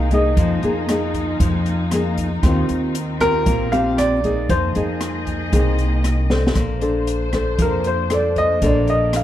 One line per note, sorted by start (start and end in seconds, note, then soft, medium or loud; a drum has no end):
0.00 0.33 C2 medium
0.00 0.35 C3 medium
0.00 2.40 A#3 medium
0.00 4.46 D#4 medium
0.00 2.40 G#4 medium
0.00 0.35 G5 medium
0.11 0.59 A#3 medium
0.11 0.60 D#4 medium
0.11 0.60 G#4 medium
0.11 1.63 D#5 medium
0.11 kick soft
0.11 closed hi-hat soft
0.37 0.61 F2 loud
0.37 1.38 F3 medium
0.37 2.41 F4 medium
0.37 kick medium
0.37 closed hi-hat soft
0.63 1.36 F2 medium
0.63 0.85 A#3 medium
0.63 0.85 D#4 medium
0.63 0.85 G#4 medium
0.63 closed hi-hat soft
0.89 1.88 A#3 medium
0.89 1.88 D#4 medium
0.89 1.88 G#4 medium
0.89 cross-stick medium
0.89 closed hi-hat soft
1.14 kick soft
1.14 closed hi-hat soft
1.40 2.39 F2 loud
1.40 2.41 F3 medium
1.40 kick medium
1.40 closed hi-hat soft
1.66 closed hi-hat soft
1.91 2.25 A#3 medium
1.91 2.26 D#4 soft
1.91 2.26 G#4 medium
1.91 cross-stick medium
1.91 closed hi-hat soft
2.17 kick soft
2.17 closed hi-hat soft
2.43 2.67 D#2 loud
2.43 3.44 D#3 medium
2.43 2.95 C4 medium
2.43 4.48 C4 medium
2.43 4.48 F4 medium
2.43 2.95 F4 medium
2.43 2.95 G4 medium
2.43 kick medium
2.43 cross-stick medium
2.43 closed hi-hat soft
2.69 3.43 D#2 medium
2.69 closed hi-hat soft
2.95 closed hi-hat soft
3.20 3.68 C4 medium
3.20 3.68 F4 medium
3.20 3.69 G4 medium
3.20 3.74 A#4 loud
3.20 kick soft
3.20 cross-stick medium
3.20 closed hi-hat soft
3.46 4.46 A#1 medium
3.46 4.23 A#3 medium
3.46 kick medium
3.46 closed hi-hat soft
3.72 4.20 C4 medium
3.72 4.20 F4 medium
3.72 4.20 G4 medium
3.72 3.99 F5 medium
3.72 closed hi-hat soft
3.98 4.51 D5 medium
3.98 cross-stick medium
3.98 closed hi-hat soft
4.24 4.71 A#3 medium
4.24 4.72 D#4 medium
4.24 4.72 G#4 medium
4.24 kick soft
4.24 closed hi-hat soft
4.49 4.73 F2 loud
4.49 5.50 F3 medium
4.49 6.54 A#3 medium
4.49 6.54 G#4 medium
4.49 6.00 C5 medium
4.49 6.54 D#5 medium
4.49 kick soft
4.49 closed hi-hat soft
4.75 5.49 F2 medium
4.75 5.49 A#3 medium
4.75 5.49 D#4 soft
4.75 5.49 G#4 medium
4.75 closed hi-hat soft
5.01 cross-stick medium
5.01 closed hi-hat soft
5.27 kick soft
5.27 closed hi-hat soft
5.52 6.52 C2 medium
5.52 6.53 C3 medium
5.52 6.26 A#3 medium
5.52 6.26 D#4 medium
5.52 6.26 G#4 medium
5.52 kick medium
5.52 closed hi-hat soft
5.78 closed hi-hat soft
6.04 cross-stick medium
6.04 closed hi-hat soft
6.30 6.81 D4 medium
6.30 6.81 A4 medium
6.30 6.81 C5 medium
6.30 snare soft
6.47 snare soft
6.55 7.55 A#1 medium
6.55 7.56 A#3 medium
6.55 9.23 A#3 medium
6.55 9.23 D4 medium
6.55 8.61 C5 medium
6.55 kick soft
6.55 cross-stick soft
6.55 closed hi-hat soft
6.81 7.29 D4 soft
6.81 7.29 A4 medium
6.81 7.29 C5 medium
6.81 closed hi-hat soft
7.07 closed hi-hat soft
7.33 8.07 D4 soft
7.33 8.07 A4 medium
7.33 8.07 C5 medium
7.33 kick soft
7.33 cross-stick medium
7.33 closed hi-hat soft
7.59 8.58 F2 medium
7.59 8.60 F3 medium
7.59 7.86 A#4 medium
7.59 kick medium
7.59 closed hi-hat soft
7.84 8.11 C5 medium
7.84 closed hi-hat soft
8.10 8.58 D4 soft
8.10 8.58 A4 medium
8.10 8.59 C5 medium
8.10 8.37 D5 medium
8.10 cross-stick medium
8.10 closed hi-hat soft
8.36 8.62 D#5 medium
8.36 kick soft
8.36 closed hi-hat soft
8.62 9.23 A#1 loud
8.62 9.23 A#3 medium
8.62 9.23 D4 medium
8.62 9.23 A4 medium
8.62 9.23 C5 medium
8.62 9.23 D5 medium
8.62 kick medium
8.62 closed hi-hat soft
8.66 8.89 D5 medium
8.87 9.14 D#5 medium
8.87 closed hi-hat soft
9.13 9.23 F5 medium
9.13 cross-stick medium
9.13 closed hi-hat soft